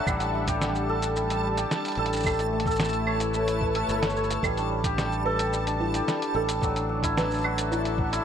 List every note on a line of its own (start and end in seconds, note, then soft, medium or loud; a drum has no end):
0.00 0.12 F#3 medium
0.00 0.21 D4 medium
0.00 2.24 D4 medium
0.00 2.39 E4 medium
0.00 0.15 F#4 loud
0.00 0.55 A4 loud
0.00 3.12 A4 medium
0.00 0.95 E5 medium
0.00 0.94 F#5 medium
0.00 8.24 A5 medium
0.06 1.64 A1 medium
0.06 2.25 G3 medium
0.06 0.34 G3 medium
0.06 kick loud
0.06 claves medium
0.06 shaker medium
0.20 1.30 D4 medium
0.20 closed hi-hat soft
0.20 shaker soft
0.35 0.61 G3 medium
0.47 1.57 G4 loud
0.47 kick loud
0.47 closed hi-hat medium
0.47 shaker medium
0.62 1.15 G3 medium
0.62 snare medium
0.62 shaker medium
0.75 shaker soft
0.89 1.98 A4 loud
0.94 3.13 A5 medium
1.02 closed hi-hat medium
1.02 shaker medium
1.16 1.43 G3 medium
1.16 shaker medium
1.30 3.13 D4 medium
1.30 closed hi-hat soft
1.30 shaker soft
1.44 1.70 G3 medium
1.57 4.71 G4 medium
1.57 closed hi-hat soft
1.57 shaker medium
1.71 2.30 G3 medium
1.71 snare medium
1.71 shaker medium
1.85 closed hi-hat soft
1.85 shaker soft
1.88 closed hi-hat soft
1.92 closed hi-hat soft
1.95 3.82 A1 loud
1.95 2.66 A4 loud
1.95 closed hi-hat soft
2.06 closed hi-hat medium
2.13 shaker medium
2.16 shaker medium
2.20 shaker soft
2.23 4.43 A3 medium
2.23 2.52 A3 medium
2.23 kick loud
2.23 claves medium
2.23 shaker soft
2.26 shaker medium
2.29 shaker soft
2.33 shaker soft
2.36 closed hi-hat soft
2.36 shaker soft
2.39 3.48 E4 medium
2.39 shaker soft
2.48 5.21 E4 medium
2.53 2.80 A3 medium
2.60 closed hi-hat medium
2.66 3.75 A4 loud
2.66 kick loud
2.66 shaker soft
2.71 shaker soft
2.76 snare loud
2.76 shaker soft
2.80 3.35 A3 medium
2.80 shaker medium
2.84 shaker soft
2.89 shaker medium
2.93 closed hi-hat soft
2.93 shaker soft
3.02 5.30 B4 medium
3.07 4.16 C#5 loud
3.07 claves medium
3.20 5.30 C#5 medium
3.20 closed hi-hat medium
3.20 shaker medium
3.34 3.62 A3 medium
3.34 shaker medium
3.48 6.97 E4 medium
3.48 closed hi-hat soft
3.48 shaker soft
3.61 3.89 A3 medium
3.61 kick loud
3.75 5.25 A4 medium
3.75 closed hi-hat soft
3.88 4.37 G1 medium
3.88 8.24 A3 medium
3.88 shaker medium
4.03 snare medium
4.03 closed hi-hat soft
4.03 shaker soft
4.10 shaker soft
4.16 4.64 C#5 loud
4.16 shaker soft
4.24 shaker soft
4.31 closed hi-hat medium
4.31 shaker medium
4.43 6.00 A1 medium
4.43 6.62 G3 medium
4.43 4.70 G3 medium
4.43 4.59 A4 medium
4.43 kick loud
4.43 claves medium
4.43 shaker medium
4.57 5.67 D4 medium
4.57 closed hi-hat soft
4.57 shaker soft
4.62 8.24 A4 medium
4.71 4.98 G3 medium
4.79 7.31 A5 medium
4.84 5.94 G4 loud
4.84 kick loud
4.84 closed hi-hat soft
4.84 shaker medium
4.88 8.24 D4 medium
4.98 5.52 G3 medium
4.98 snare medium
4.98 shaker medium
5.12 shaker soft
5.25 6.34 A4 loud
5.25 5.41 B4 medium
5.39 closed hi-hat medium
5.39 shaker medium
5.53 5.80 G3 medium
5.53 shaker medium
5.67 6.76 D4 medium
5.67 closed hi-hat soft
5.67 shaker soft
5.80 6.07 G3 medium
5.80 6.06 E4 medium
5.94 6.69 G4 loud
5.94 closed hi-hat soft
5.94 shaker medium
6.08 6.67 G3 medium
6.08 snare medium
6.08 shaker soft
6.22 closed hi-hat soft
6.22 shaker soft
6.35 8.19 A1 loud
6.35 8.24 A4 loud
6.35 6.51 A4 medium
6.49 closed hi-hat medium
6.49 shaker medium
6.62 6.88 F#3 medium
6.62 kick loud
6.62 shaker soft
6.76 7.85 D4 medium
6.76 closed hi-hat soft
6.76 shaker soft
6.89 7.15 F#3 medium
7.03 8.12 E4 loud
7.03 kick loud
7.03 closed hi-hat medium
7.03 shaker medium
7.13 7.70 F#3 medium
7.13 8.24 E5 medium
7.18 7.32 B4 medium
7.18 snare medium
7.18 shaker soft
7.31 shaker soft
7.34 shaker soft
7.36 shaker soft
7.38 shaker soft
7.41 shaker soft
7.42 8.24 F#4 loud
7.42 claves medium
7.42 shaker soft
7.58 8.24 F#5 medium
7.58 closed hi-hat medium
7.58 shaker medium
7.72 7.97 F#3 medium
7.72 7.97 E4 medium
7.72 shaker medium
7.85 8.24 D4 medium
7.85 closed hi-hat soft
7.85 shaker soft
7.98 8.24 F#3 medium
7.98 kick loud
8.13 8.24 E4 loud
8.13 closed hi-hat medium
8.13 shaker medium